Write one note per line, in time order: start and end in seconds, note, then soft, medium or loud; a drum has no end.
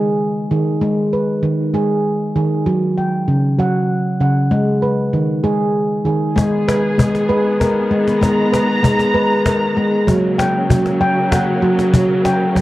0.00 0.44 G#3 medium
0.00 0.50 G#4 medium
0.00 0.20 B4 medium
0.51 0.79 D#3 medium
0.51 1.44 G#4 soft
0.81 1.37 G#3 medium
1.13 2.05 B4 medium
1.43 1.71 D#3 medium
1.74 2.29 G#3 medium
1.74 2.35 G#4 medium
2.36 2.64 D#3 medium
2.36 2.98 G#4 soft
2.66 3.22 F#3 medium
2.98 3.90 G5 medium
3.28 3.56 C#3 medium
3.59 4.14 F#3 medium
3.59 4.20 F#5 medium
4.20 4.48 C#3 medium
4.20 4.83 F#5 medium
4.51 5.07 G#3 medium
4.82 5.75 B4 medium
5.13 5.41 D#3 medium
5.44 6.00 G#3 medium
5.44 6.05 G#4 medium
6.05 6.33 D#3 medium
6.05 6.68 G#4 medium
6.36 10.04 D#3 medium
6.36 6.92 G#3 loud
6.36 10.04 B3 medium
6.36 8.20 G#4 medium
6.36 cajon bass medium
6.36 cajon slap soft
6.68 7.28 B4 medium
6.68 cajon slap medium
6.98 7.26 G#3 medium
6.98 cajon bass medium
7.15 cajon slap soft
7.29 7.57 G#3 medium
7.29 7.91 B4 medium
7.60 8.53 A#4 medium
7.60 cajon bass soft
7.60 cajon slap soft
7.91 8.19 G#3 medium
8.07 cajon slap soft
8.21 8.77 G#3 loud
8.21 10.06 A#5 medium
8.21 cajon bass medium
8.21 cajon slap soft
8.52 9.13 B4 medium
8.52 cajon slap medium
8.83 9.12 G#3 medium
8.83 cajon bass medium
8.99 cajon slap soft
9.14 9.43 G#3 medium
9.14 9.77 B4 medium
9.46 10.39 A#4 medium
9.46 cajon bass medium
9.46 cajon slap medium
9.77 10.05 G#3 medium
10.07 12.61 C#3 medium
10.07 10.63 F#3 loud
10.07 12.61 F#3 medium
10.07 12.61 A#3 medium
10.07 cajon bass medium
10.07 cajon slap soft
10.38 10.99 G5 medium
10.38 cajon slap medium
10.70 10.98 F#3 medium
10.70 cajon bass medium
10.85 cajon slap soft
11.01 11.29 F#3 medium
11.01 11.63 G5 medium
11.32 12.25 F#5 medium
11.32 cajon bass medium
11.32 cajon slap medium
11.62 11.90 F#3 loud
11.79 cajon slap soft
11.93 12.49 F#3 loud
11.93 cajon bass medium
12.09 cajon slap soft
12.25 12.61 G5 medium
12.25 cajon slap medium
12.41 cajon slap soft
12.56 12.61 F#3 medium
12.56 cajon bass medium
12.56 cajon slap soft